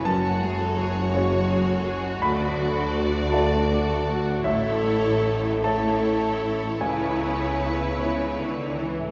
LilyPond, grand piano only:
\new Staff \with { instrumentName = "Grand piano" } { \time 6/8 \key fis \minor \tempo 4. = 53 << { a''2. | b''4. a''8 r4 | e''4. a''4. | gis''2~ gis''8 r8 | } \\ { fis,4. <gis fis' cis''>4. | d,4. <a fis' d''>4. | a,,4. <a e' cis''>4. | cis,4. <b e' cis''>4. | } >> }